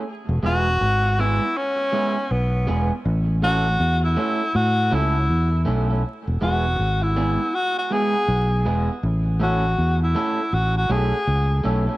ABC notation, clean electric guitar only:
X:1
M:4/4
L:1/16
Q:"Swing 16ths" 1/4=80
K:E
V:1 name="Clean electric guitar"
z2 [G,B,EG] z3 [G,B,EG] z3 [G,B,EG] z3 [G,B,EG] z | z2 [A,CEA] z3 [A,CEA] z3 [A,CEA] z3 [A,CEA] [A,CEA] | z2 [G,B,EG] z3 [G,B,EG] z3 [G,B,EG] z3 [G,B,EG] z | z2 [A,CEA] z3 [A,CEA] z3 [A,CEA] z3 [A,CEA] [A,CEA] |]